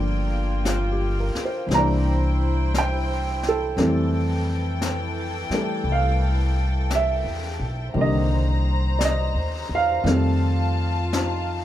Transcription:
0.00 1.31 G1 medium
0.00 1.68 F3 soft
0.00 1.67 A#3 medium
0.00 1.70 A#3 soft
0.00 1.71 D4 medium
0.00 1.66 F4 medium
0.00 1.70 A4 soft
0.00 1.78 D5 medium
0.00 1.65 G5 medium
0.65 1.14 F4 soft
0.65 brush sweep soft
0.65 snare soft
0.65 hi-hat pedal soft
0.92 1.36 G4 soft
1.20 1.51 A#4 soft
1.35 muted upright bass stroke soft
1.35 snare soft
1.45 1.81 C5 soft
1.66 3.73 C2 medium
1.66 3.76 E3 soft
1.66 3.77 G3 soft
1.66 3.76 E4 medium
1.66 3.75 C5 medium
1.66 3.75 G5 medium
1.71 3.80 A#3 soft
1.71 2.79 A#5 medium
1.71 brush sweep soft
1.71 snare soft
1.78 3.82 D4 medium
2.74 brush sweep soft
2.74 snare soft
2.74 hi-hat pedal soft
2.78 3.42 G5 medium
3.43 snare soft
3.49 5.85 A4 medium
3.77 5.47 F2 medium
3.77 7.91 E3 medium
3.77 7.96 E3 medium
3.77 5.49 G3 soft
3.77 5.52 A3 soft
3.77 7.96 C4 medium
3.77 7.91 A4 medium
3.77 7.91 G5 medium
3.77 brush sweep soft
3.77 snare soft
4.82 brush sweep soft
4.82 snare soft
4.82 hi-hat pedal soft
5.50 7.94 G3 soft
5.50 muted upright bass stroke soft
5.50 snare soft
5.54 7.97 A3 soft
5.84 7.20 C2 medium
5.84 brush sweep soft
5.92 6.89 F5 medium
6.90 brush sweep soft
6.90 snare soft
6.90 hi-hat pedal medium
6.95 7.94 E5 medium
7.25 7.57 E2 soft
7.60 7.93 B1 medium
7.94 9.30 C2 medium
7.94 10.02 D#3 soft
7.94 10.03 G3 soft
7.94 10.06 A#3 soft
7.94 10.03 C5 medium
7.94 10.03 A#5 medium
7.94 brush sweep soft
7.98 10.07 D3 soft
7.98 8.94 D#5 medium
8.99 9.02 D5 medium
8.99 brush sweep soft
8.99 snare soft
8.99 hi-hat pedal soft
9.05 9.68 D#5 medium
9.34 9.67 D#2 medium
9.69 10.02 E2 medium
9.75 11.64 F5 medium
10.04 11.64 F2 medium
10.04 11.64 D#3 soft
10.04 11.64 G3 soft
10.04 11.64 A3 soft
10.04 11.64 F4 medium
10.04 11.64 F5 medium
10.04 11.64 A5 medium
10.04 brush sweep soft
10.04 snare soft
10.09 11.64 C4 soft
11.13 11.64 D#4 soft
11.13 brush sweep soft
11.13 snare soft
11.13 hi-hat pedal soft

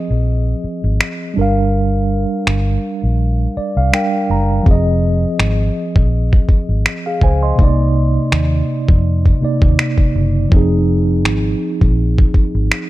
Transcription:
0.00 1.31 F3 medium
0.00 1.33 C4 medium
0.00 1.34 G#4 medium
0.00 1.35 D#5 medium
0.10 0.53 A#1 medium
0.64 muted fingered electric bass stroke soft
0.84 0.97 G#1 medium
1.01 finger snap loud
1.34 2.24 G1 medium
1.34 3.88 G3 medium
1.34 3.89 D4 medium
1.39 3.90 A#4 medium
1.39 3.76 F5 medium
2.47 2.76 G1 medium
2.47 finger snap medium
3.03 3.45 A#1 medium
3.57 3.75 D5 medium
3.57 muted fingered electric bass stroke soft
3.76 3.90 C2 medium
3.76 3.92 F5 medium
3.92 4.66 G3 medium
3.92 4.66 D4 soft
3.92 4.67 A#4 medium
3.92 4.68 F5 medium
3.92 4.28 G5 medium
3.92 finger snap loud
4.30 4.59 F#1 medium
4.30 4.64 A#5 medium
4.63 5.24 F1 loud
4.63 7.53 F3 medium
4.63 7.55 C4 medium
4.63 kick loud
4.68 6.47 G#4 medium
4.68 6.48 D#5 medium
5.39 5.68 G#1 medium
5.39 finger snap loud
5.96 6.38 A#1 medium
5.96 kick loud
6.33 kick medium
6.49 muted fingered electric bass stroke soft
6.49 kick medium
6.69 6.82 G#1 medium
6.86 finger snap loud
7.06 7.22 G#4 medium
7.06 7.22 F5 medium
7.21 7.51 C#2 medium
7.21 7.42 C5 medium
7.21 7.42 G#5 medium
7.21 kick medium
7.43 7.77 D#5 medium
7.43 7.77 C6 medium
7.56 8.17 C2 medium
7.56 9.36 C3 medium
7.56 9.38 A#3 medium
7.56 kick loud
7.61 9.39 D#4 medium
7.61 9.40 D5 medium
8.32 8.61 D#2 medium
8.32 finger snap loud
8.88 9.31 F2 medium
8.88 kick loud
9.26 kick medium
9.41 10.51 C3 medium
9.41 10.52 A#3 medium
9.41 10.52 D#4 soft
9.41 10.53 D5 medium
9.41 muted fingered electric bass stroke soft
9.62 9.75 D#2 medium
9.62 kick loud
9.79 finger snap loud
9.98 kick medium
10.15 10.44 F#1 medium
10.49 11.25 F1 loud
10.49 12.90 F3 medium
10.49 12.90 C4 medium
10.49 kick loud
10.54 12.90 D#4 medium
10.54 12.90 G#4 medium
11.25 11.54 G#1 medium
11.25 finger snap loud
11.81 12.23 A#1 medium
11.81 kick medium
12.18 kick medium
12.34 muted fingered electric bass stroke soft
12.34 kick medium
12.55 12.68 G#1 medium
12.72 finger snap loud

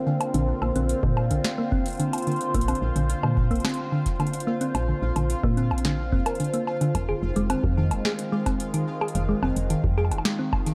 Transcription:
0.00 6.95 D3 medium
0.00 8.02 A#3 medium
0.00 10.74 C4 medium
0.00 10.74 F4 medium
0.00 10.74 C5 medium
0.00 10.74 F5 medium
0.07 0.17 D3 medium
0.21 closed hi-hat medium
0.21 high bongo medium
0.34 0.53 A#1 loud
0.34 0.44 D3 medium
0.34 closed hi-hat medium
0.62 0.71 A#1 medium
0.62 0.68 A#3 loud
0.62 high bongo soft
0.76 0.94 A#1 medium
0.76 0.89 C4 medium
0.76 closed hi-hat medium
0.89 closed hi-hat medium
1.03 1.32 A#2 medium
1.03 1.13 D3 medium
1.03 kick loud
1.17 high bongo medium
1.31 1.40 A#1 medium
1.31 1.41 D3 medium
1.31 closed hi-hat medium
1.44 snare loud
1.44 closed hi-hat medium
1.58 1.64 A#3 loud
1.72 1.85 C4 medium
1.72 kick loud
1.86 closed hi-hat medium
1.88 closed hi-hat soft
1.93 closed hi-hat soft
1.95 closed hi-hat soft
1.97 2.10 D3 medium
1.97 closed hi-hat soft
2.00 closed hi-hat medium
2.13 closed hi-hat medium
2.13 high bongo medium
2.18 closed hi-hat soft
2.22 closed hi-hat soft
2.27 2.37 D3 medium
2.27 closed hi-hat soft
2.32 closed hi-hat soft
2.36 closed hi-hat soft
2.41 closed hi-hat medium
2.54 2.73 A#1 loud
2.54 2.61 A#3 loud
2.54 kick medium
2.54 closed hi-hat medium
2.61 closed hi-hat medium
2.68 2.81 C4 medium
2.68 closed hi-hat soft
2.68 high bongo soft
2.75 closed hi-hat soft
2.82 2.91 A#1 medium
2.96 3.14 A#1 medium
2.96 3.06 D3 medium
2.96 closed hi-hat soft
3.10 closed hi-hat medium
3.23 3.52 A#2 medium
3.23 3.33 D3 medium
3.23 high bongo medium
3.37 kick loud
3.51 3.60 A#1 medium
3.51 3.57 A#3 loud
3.51 closed hi-hat soft
3.55 closed hi-hat soft
3.60 closed hi-hat soft
3.65 3.78 C4 medium
3.65 snare loud
3.65 closed hi-hat medium
3.65 high bongo soft
3.69 closed hi-hat soft
3.74 closed hi-hat soft
3.92 4.02 D3 medium
4.06 kick medium
4.06 closed hi-hat medium
4.20 4.30 D3 medium
4.20 closed hi-hat soft
4.20 high bongo medium
4.27 closed hi-hat soft
4.33 closed hi-hat medium
4.40 closed hi-hat medium
4.47 4.53 A#3 loud
4.61 4.74 C4 medium
4.61 closed hi-hat medium
4.75 4.93 A#1 loud
4.75 closed hi-hat medium
4.75 high bongo medium
4.88 4.99 D3 medium
5.02 5.11 A#1 medium
5.16 5.35 A#1 medium
5.16 5.26 D3 medium
5.16 closed hi-hat soft
5.16 high bongo soft
5.30 closed hi-hat medium
5.44 5.73 A#2 medium
5.44 5.50 A#3 loud
5.44 kick loud
5.57 5.70 C4 medium
5.57 closed hi-hat soft
5.71 6.14 A#1 medium
5.71 high bongo medium
5.78 closed hi-hat medium
5.85 5.95 D3 medium
5.85 snare loud
5.85 closed hi-hat medium
6.12 6.22 F2 medium
6.12 6.22 C4 medium
6.12 kick loud
6.26 6.36 A#4 medium
6.26 closed hi-hat soft
6.26 high bongo medium
6.35 closed hi-hat soft
6.40 6.50 D3 medium
6.40 closed hi-hat medium
6.44 closed hi-hat soft
6.54 6.64 A#3 medium
6.54 closed hi-hat medium
6.67 high bongo soft
6.81 6.91 D3 loud
6.81 closed hi-hat soft
6.95 7.13 F1 loud
6.95 10.74 D#3 medium
6.95 kick medium
6.95 closed hi-hat medium
6.95 high bongo soft
7.09 7.15 G#4 loud
7.22 7.32 F1 medium
7.22 10.74 G#3 medium
7.36 7.55 F1 medium
7.36 7.42 G#3 loud
7.36 closed hi-hat soft
7.50 7.63 C4 medium
7.50 closed hi-hat medium
7.50 high bongo medium
7.64 7.93 F2 medium
7.64 kick loud
7.77 7.88 D#3 medium
7.91 8.00 F1 medium
7.91 closed hi-hat soft
7.91 high bongo medium
8.05 8.11 G#4 loud
8.05 snare loud
8.19 closed hi-hat medium
8.32 8.38 G#3 loud
8.46 8.59 C4 medium
8.46 kick medium
8.46 closed hi-hat medium
8.46 high bongo medium
8.60 closed hi-hat medium
8.74 8.84 D#3 medium
8.74 closed hi-hat medium
9.01 9.07 G#4 loud
9.01 high bongo medium
9.08 closed hi-hat soft
9.15 9.34 F1 loud
9.15 closed hi-hat medium
9.29 9.35 G#3 loud
9.43 9.52 F1 medium
9.43 9.56 C4 medium
9.43 high bongo soft
9.56 9.75 F1 medium
9.56 closed hi-hat soft
9.70 9.80 D#3 medium
9.70 closed hi-hat medium
9.84 10.13 F2 medium
9.84 kick loud
9.98 10.04 G#4 loud
9.98 high bongo soft
10.05 high bongo soft
10.11 10.21 F1 medium
10.11 closed hi-hat medium
10.11 high bongo soft
10.18 high bongo soft
10.25 10.31 G#3 loud
10.25 snare loud
10.25 closed hi-hat medium
10.39 10.52 C4 medium
10.53 kick loud
10.53 high bongo medium
10.66 10.74 D#3 medium
10.66 closed hi-hat medium

